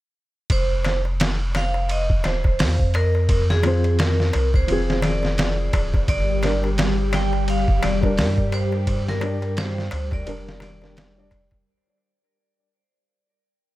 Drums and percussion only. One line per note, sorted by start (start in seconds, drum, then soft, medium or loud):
0.50 kick loud
0.50 ride medium
0.50 darbuka tek soft
0.85 snare soft
0.85 ride medium
0.85 darbuka tek medium
1.05 darbuka tek soft
1.20 snare loud
1.20 ride medium
1.20 darbuka tek soft
1.55 snare soft
1.55 ride medium
1.55 darbuka tek medium
1.74 darbuka tek soft
1.89 ride medium
1.89 darbuka tek soft
2.10 kick medium
2.24 snare soft
2.24 ride medium
2.24 darbuka tek medium
2.44 kick medium
2.44 darbuka tek medium
2.59 snare loud
2.59 open hi-hat medium
2.59 darbuka tek soft
2.79 kick medium
2.94 ride medium
2.94 darbuka tek medium
3.15 darbuka tek soft
3.29 kick loud
3.29 ride medium
3.29 darbuka tek soft
3.50 snare medium
3.63 ride medium
3.63 darbuka tek medium
3.84 ride soft
3.84 darbuka tek soft
3.99 snare loud
3.99 ride medium
3.99 darbuka tek soft
4.20 snare soft
4.33 ride medium
4.33 darbuka tek medium
4.54 kick medium
4.54 darbuka tek soft
4.68 ride medium
4.68 darbuka tek soft
4.90 snare soft
5.02 snare soft
5.02 ride medium
5.02 darbuka tek medium
5.02 darbuka dum medium
5.23 snare soft
5.23 darbuka tek medium
5.38 snare loud
5.38 ride medium
5.38 darbuka tek soft
5.73 kick medium
5.73 ride medium
5.73 darbuka tek medium
5.94 kick medium
5.94 darbuka tek soft
6.08 kick loud
6.08 ride medium
6.08 darbuka tek soft
6.43 snare soft
6.43 ride medium
6.43 darbuka tek medium
6.64 darbuka tek medium
6.78 snare loud
6.78 ride medium
6.78 darbuka tek soft
7.13 snare soft
7.13 ride medium
7.13 darbuka tek loud
7.33 darbuka tek soft
7.48 ride medium
7.48 darbuka tek soft
7.68 kick loud
7.83 snare soft
7.83 ride medium
7.83 darbuka tek medium
8.03 kick medium
8.03 darbuka tek medium
8.18 snare loud
8.18 open hi-hat medium
8.18 darbuka tek soft
8.38 kick medium
8.52 ride medium
8.52 darbuka tek medium
8.72 darbuka tek soft
8.87 kick loud
8.87 ride medium
8.87 darbuka tek soft
9.08 snare medium
9.21 ride medium
9.21 darbuka tek loud
9.42 ride soft
9.42 darbuka tek medium
9.57 snare loud
9.57 ride medium
9.57 darbuka tek soft
9.78 snare soft
9.91 ride medium
9.91 darbuka tek loud
10.11 kick medium
10.11 darbuka tek soft
10.26 ride medium
10.26 darbuka tek soft
10.48 snare soft
10.60 snare soft
10.60 ride medium
10.60 darbuka tek medium
10.60 darbuka dum medium
10.82 snare soft
10.82 darbuka tek medium
10.96 snare loud
10.96 ride medium
10.96 darbuka tek soft
11.31 kick loud
11.31 ride medium
11.31 darbuka tek medium
11.51 kick medium
11.51 darbuka tek medium